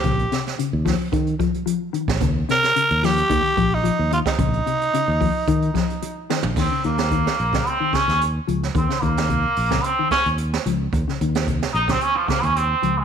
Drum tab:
CC |----------------|----------------|----------------|x---------------|
HH |xxxxx-o-xxxxx-x-|x-xxxxoxxxx-x-xx|xxxxx-o-xxxxx---|--xxx-xxx-xxx-x-|
SD |--oo--o--------o|--oo--o--------o|----------o---o-|o--o-o-o--oo---o|
FT |----------------|----------------|---------------o|----------------|
BD |o-----o-o-o----o|o-------o-o----o|o-----o-o-o-----|o---o--o--o-----|

CC |----------------|----------------|
HH |x-xxx-o-x-xxx-x-|x-xxx-xxx-xxx-x-|
SD |-o-o---o--o--o--|-o-o-o-o--o-----|
FT |----------------|----------------|
BD |o-o-o--o--o-----|o---o--o--o-----|